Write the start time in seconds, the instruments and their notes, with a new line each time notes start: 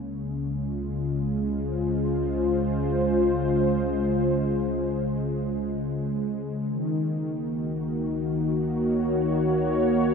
Already playing: sub bass C#2, analog synth pad C#3 G#3 A#3
0.57 analog synth pad F4
1.49 analog synth pad C5
6.67 sub bass C#2, analog synth pad D#3
6.91 analog synth pad A#3
7.48 analog synth pad F#4
8.76 analog synth pad C#5